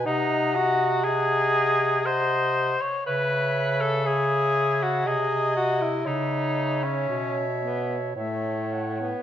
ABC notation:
X:1
M:3/4
L:1/16
Q:1/4=60
K:C#m
V:1 name="Soprano saxophone"
f4 f4 f3 z | e4 e4 d4 | e8 e2 f2 |]
V:2 name="Clarinet"
d4 d4 d3 z | c4 c4 d4 | c8 c4 |]
V:3 name="Tenor saxophone"
D2 F2 G4 ^B3 c | B3 A G3 F G2 F E | D3 C3 B, z A,3 B, |]
V:4 name="Bass clarinet" clef=bass
^B,,8- B,,3 z | C,8 ^B,,4 | C,4 B,,4 A,,4 |]